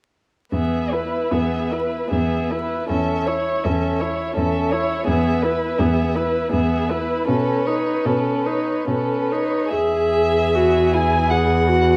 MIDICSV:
0, 0, Header, 1, 5, 480
1, 0, Start_track
1, 0, Key_signature, 4, "major"
1, 0, Tempo, 789474
1, 326, Time_signature, 3, 2, 24, 8
1, 1763, Tempo, 752823
1, 2243, Tempo, 714286
1, 3683, Tempo, 745342
1, 4643, Tempo, 771208
1, 5123, Tempo, 847458
1, 6083, Tempo, 807537
1, 6563, Tempo, 742574
1, 7473, End_track
2, 0, Start_track
2, 0, Title_t, "Violin"
2, 0, Program_c, 0, 40
2, 321, Note_on_c, 0, 76, 24
2, 562, Note_on_c, 0, 71, 23
2, 571, Note_off_c, 0, 76, 0
2, 798, Note_on_c, 0, 76, 24
2, 807, Note_off_c, 0, 71, 0
2, 1048, Note_on_c, 0, 71, 23
2, 1057, Note_off_c, 0, 76, 0
2, 1277, Note_off_c, 0, 71, 0
2, 1281, Note_on_c, 0, 76, 19
2, 1522, Note_on_c, 0, 71, 22
2, 1531, Note_off_c, 0, 76, 0
2, 1756, Note_off_c, 0, 71, 0
2, 1760, Note_on_c, 0, 76, 27
2, 1999, Note_on_c, 0, 73, 28
2, 2009, Note_off_c, 0, 76, 0
2, 2235, Note_on_c, 0, 76, 25
2, 2244, Note_off_c, 0, 73, 0
2, 2481, Note_on_c, 0, 73, 26
2, 2491, Note_off_c, 0, 76, 0
2, 2717, Note_off_c, 0, 73, 0
2, 2721, Note_on_c, 0, 76, 25
2, 2955, Note_on_c, 0, 73, 27
2, 2965, Note_off_c, 0, 76, 0
2, 3188, Note_off_c, 0, 73, 0
2, 3192, Note_on_c, 0, 76, 35
2, 3432, Note_on_c, 0, 71, 33
2, 3442, Note_off_c, 0, 76, 0
2, 3676, Note_on_c, 0, 76, 31
2, 3686, Note_off_c, 0, 71, 0
2, 3911, Note_on_c, 0, 71, 27
2, 3920, Note_off_c, 0, 76, 0
2, 4143, Note_off_c, 0, 71, 0
2, 4147, Note_on_c, 0, 76, 28
2, 4389, Note_on_c, 0, 71, 32
2, 4398, Note_off_c, 0, 76, 0
2, 4629, Note_off_c, 0, 71, 0
2, 4633, Note_on_c, 0, 71, 35
2, 4874, Note_on_c, 0, 73, 30
2, 4883, Note_off_c, 0, 71, 0
2, 5119, Note_on_c, 0, 71, 28
2, 5127, Note_off_c, 0, 73, 0
2, 5349, Note_on_c, 0, 73, 24
2, 5357, Note_off_c, 0, 71, 0
2, 5584, Note_off_c, 0, 73, 0
2, 5588, Note_on_c, 0, 71, 25
2, 5835, Note_on_c, 0, 73, 28
2, 5843, Note_off_c, 0, 71, 0
2, 6071, Note_off_c, 0, 73, 0
2, 6075, Note_on_c, 0, 76, 44
2, 6802, Note_on_c, 0, 80, 46
2, 6812, Note_off_c, 0, 76, 0
2, 7040, Note_on_c, 0, 78, 39
2, 7050, Note_off_c, 0, 80, 0
2, 7473, Note_off_c, 0, 78, 0
2, 7473, End_track
3, 0, Start_track
3, 0, Title_t, "Violin"
3, 0, Program_c, 1, 40
3, 326, Note_on_c, 1, 68, 24
3, 564, Note_on_c, 1, 71, 21
3, 573, Note_off_c, 1, 68, 0
3, 810, Note_on_c, 1, 68, 20
3, 819, Note_off_c, 1, 71, 0
3, 1043, Note_on_c, 1, 71, 22
3, 1052, Note_off_c, 1, 68, 0
3, 1279, Note_off_c, 1, 71, 0
3, 1282, Note_on_c, 1, 68, 24
3, 1525, Note_on_c, 1, 71, 25
3, 1534, Note_off_c, 1, 68, 0
3, 1748, Note_off_c, 1, 71, 0
3, 1752, Note_on_c, 1, 69, 25
3, 1995, Note_on_c, 1, 73, 23
3, 2004, Note_off_c, 1, 69, 0
3, 2234, Note_on_c, 1, 69, 25
3, 2243, Note_off_c, 1, 73, 0
3, 2477, Note_on_c, 1, 73, 26
3, 2487, Note_off_c, 1, 69, 0
3, 2705, Note_off_c, 1, 73, 0
3, 2709, Note_on_c, 1, 69, 26
3, 2957, Note_on_c, 1, 73, 31
3, 2967, Note_off_c, 1, 69, 0
3, 3185, Note_off_c, 1, 73, 0
3, 3190, Note_on_c, 1, 68, 33
3, 3431, Note_on_c, 1, 71, 30
3, 3441, Note_off_c, 1, 68, 0
3, 3679, Note_on_c, 1, 68, 28
3, 3688, Note_off_c, 1, 71, 0
3, 3908, Note_on_c, 1, 71, 33
3, 3917, Note_off_c, 1, 68, 0
3, 4145, Note_off_c, 1, 71, 0
3, 4148, Note_on_c, 1, 68, 29
3, 4391, Note_on_c, 1, 71, 31
3, 4400, Note_off_c, 1, 68, 0
3, 4634, Note_off_c, 1, 71, 0
3, 4637, Note_on_c, 1, 69, 32
3, 4876, Note_on_c, 1, 71, 28
3, 4885, Note_off_c, 1, 69, 0
3, 5117, Note_on_c, 1, 69, 28
3, 5126, Note_off_c, 1, 71, 0
3, 5350, Note_on_c, 1, 71, 26
3, 5358, Note_off_c, 1, 69, 0
3, 5586, Note_off_c, 1, 71, 0
3, 5590, Note_on_c, 1, 69, 25
3, 5840, Note_on_c, 1, 71, 21
3, 5848, Note_off_c, 1, 69, 0
3, 6079, Note_off_c, 1, 71, 0
3, 6082, Note_on_c, 1, 68, 33
3, 7473, Note_off_c, 1, 68, 0
3, 7473, End_track
4, 0, Start_track
4, 0, Title_t, "Viola"
4, 0, Program_c, 2, 41
4, 318, Note_on_c, 2, 59, 22
4, 563, Note_on_c, 2, 64, 20
4, 572, Note_off_c, 2, 59, 0
4, 800, Note_on_c, 2, 59, 24
4, 809, Note_off_c, 2, 64, 0
4, 1044, Note_on_c, 2, 64, 21
4, 1054, Note_off_c, 2, 59, 0
4, 1280, Note_off_c, 2, 64, 0
4, 1284, Note_on_c, 2, 59, 23
4, 1530, Note_on_c, 2, 64, 24
4, 1539, Note_off_c, 2, 59, 0
4, 1758, Note_off_c, 2, 64, 0
4, 1761, Note_on_c, 2, 61, 27
4, 2003, Note_on_c, 2, 64, 24
4, 2013, Note_off_c, 2, 61, 0
4, 2243, Note_on_c, 2, 61, 30
4, 2253, Note_off_c, 2, 64, 0
4, 2488, Note_on_c, 2, 64, 28
4, 2498, Note_off_c, 2, 61, 0
4, 2718, Note_off_c, 2, 64, 0
4, 2722, Note_on_c, 2, 61, 28
4, 2964, Note_on_c, 2, 64, 34
4, 2974, Note_off_c, 2, 61, 0
4, 3196, Note_off_c, 2, 64, 0
4, 3200, Note_on_c, 2, 59, 34
4, 3445, Note_on_c, 2, 64, 29
4, 3455, Note_off_c, 2, 59, 0
4, 3686, Note_on_c, 2, 59, 35
4, 3696, Note_off_c, 2, 64, 0
4, 3917, Note_on_c, 2, 64, 31
4, 3926, Note_off_c, 2, 59, 0
4, 4150, Note_off_c, 2, 64, 0
4, 4154, Note_on_c, 2, 59, 34
4, 4396, Note_on_c, 2, 64, 33
4, 4406, Note_off_c, 2, 59, 0
4, 4640, Note_off_c, 2, 64, 0
4, 4644, Note_on_c, 2, 61, 32
4, 4883, Note_on_c, 2, 63, 29
4, 4893, Note_off_c, 2, 61, 0
4, 5124, Note_on_c, 2, 61, 30
4, 5133, Note_off_c, 2, 63, 0
4, 5354, Note_on_c, 2, 63, 28
4, 5362, Note_off_c, 2, 61, 0
4, 5589, Note_off_c, 2, 63, 0
4, 5592, Note_on_c, 2, 61, 25
4, 5838, Note_on_c, 2, 63, 26
4, 5846, Note_off_c, 2, 61, 0
4, 6075, Note_off_c, 2, 63, 0
4, 6078, Note_on_c, 2, 68, 36
4, 6558, Note_on_c, 2, 66, 36
4, 6567, Note_off_c, 2, 68, 0
4, 6808, Note_on_c, 2, 64, 30
4, 6817, Note_off_c, 2, 66, 0
4, 7045, Note_on_c, 2, 68, 33
4, 7055, Note_off_c, 2, 64, 0
4, 7281, Note_on_c, 2, 66, 38
4, 7290, Note_off_c, 2, 68, 0
4, 7473, Note_off_c, 2, 66, 0
4, 7473, End_track
5, 0, Start_track
5, 0, Title_t, "Cello"
5, 0, Program_c, 3, 42
5, 318, Note_on_c, 3, 40, 25
5, 733, Note_off_c, 3, 40, 0
5, 801, Note_on_c, 3, 40, 26
5, 1214, Note_off_c, 3, 40, 0
5, 1284, Note_on_c, 3, 40, 27
5, 1690, Note_off_c, 3, 40, 0
5, 1761, Note_on_c, 3, 40, 29
5, 2170, Note_off_c, 3, 40, 0
5, 2241, Note_on_c, 3, 40, 33
5, 2649, Note_off_c, 3, 40, 0
5, 2725, Note_on_c, 3, 40, 31
5, 3124, Note_off_c, 3, 40, 0
5, 3199, Note_on_c, 3, 40, 38
5, 3609, Note_off_c, 3, 40, 0
5, 3682, Note_on_c, 3, 40, 41
5, 4082, Note_off_c, 3, 40, 0
5, 4156, Note_on_c, 3, 40, 35
5, 4569, Note_off_c, 3, 40, 0
5, 4642, Note_on_c, 3, 47, 37
5, 5049, Note_off_c, 3, 47, 0
5, 5122, Note_on_c, 3, 47, 36
5, 5522, Note_off_c, 3, 47, 0
5, 5587, Note_on_c, 3, 47, 32
5, 6011, Note_off_c, 3, 47, 0
5, 6078, Note_on_c, 3, 40, 31
5, 7473, Note_off_c, 3, 40, 0
5, 7473, End_track
0, 0, End_of_file